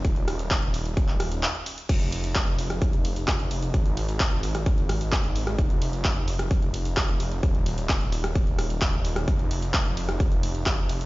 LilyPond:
<<
  \new Staff \with { instrumentName = "Detuned saw bass" } { \clef bass \time 4/4 \key f \minor \tempo 4 = 130 ees,,2. r4 | f,,1 | aes,,1 | f,,1 |
ees,,1 | f,,1 | }
  \new DrumStaff \with { instrumentName = "Drums" } \drummode { \time 4/4 <hh bd>16 hh16 <hho cymr ss>16 hh16 <hc hh bd>16 hh16 <hho cymr>16 hh16 <hh bd>16 <hc hh>16 <hho cymr ss>16 hh16 <hc hh>16 hh16 <hho cymr>16 hh16 | <cymc hh bd>16 hh16 <hho cymr>16 hh16 <hc hh bd>16 hh16 <hho cymr>16 <hh ss>16 <hh bd>16 hh16 <hho cymr>16 hh16 <hc hh bd ss>16 hh16 <hho cymr>16 hh16 | <hh bd>16 hh16 <hho cymr>16 hh16 <hc hh bd>16 hh16 <hho cymr>16 <hh ss>16 <hh bd>16 hh16 <hho cymr ss>16 hh16 <hc hh bd>16 hh16 <hho cymr>16 <hh ss>16 | <hh bd>16 hh16 <hho cymr>16 hh16 <hc hh bd>16 hh16 <hho cymr>16 <hh ss>16 <hh bd>16 hh16 <hho cymr>16 hh16 <hc hh bd ss>16 hh16 <hho cymr>16 hh16 |
<hh bd>16 hh16 <hho cymr>16 hh16 <hc hh bd>16 hh16 <hho cymr>16 <hh ss>16 <hh bd>16 hh16 <hho cymr ss>16 hh16 <hc hh bd>16 hh16 <hho cymr>16 <hh ss>16 | <hh bd>16 hh16 <hho cymr>16 hh16 <hc hh bd>16 hh16 <hho cymr>16 <hh ss>16 <hh bd>16 hh16 <hho cymr>16 hh16 <hc hh bd ss>16 hh16 <hho cymr>16 hh16 | }
>>